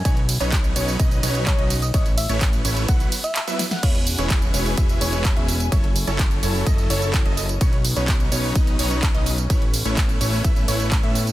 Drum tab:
CC |----------------|----------------|x---------------|----------------|
RD |x-x-x-x-x-x-x-x-|x-x-x-x-x-x-x-x-|x---x---x---x---|x---x---x---x---|
HH |xxoxxxo-xxoxxxox|xxoxxxoxxxoxxxox|xxoxxxo-xxoxxxox|xxoxxxo-xxoxxxox|
TB |x-xxxxxxxxxxx-xx|xxxxxxxxxxxxxxxx|x-xxxxxxxxxxx-xx|x-xxxxxxxxxxx-xx|
CP |----x-------x---|----x-------x---|----x-------x---|----x-------x---|
SD |----------------|--------------oo|----------------|----------------|
BD |o---o---o---o---|o---o---o-------|o---o---o---o---|o---o---o---o---|

CC |----------------|----------------|
RD |x---x---x---x---|x---x---x---x---|
HH |xxoxxxo-xxoxxxox|xxoxxxo-xxo-xxox|
TB |x-xxxxxxxxxxx-xx|x-xxxxxxxxxxx-xx|
CP |----x-------x---|----x-------x---|
SD |----------------|----------------|
BD |o---o---o---o---|o---o---o---o---|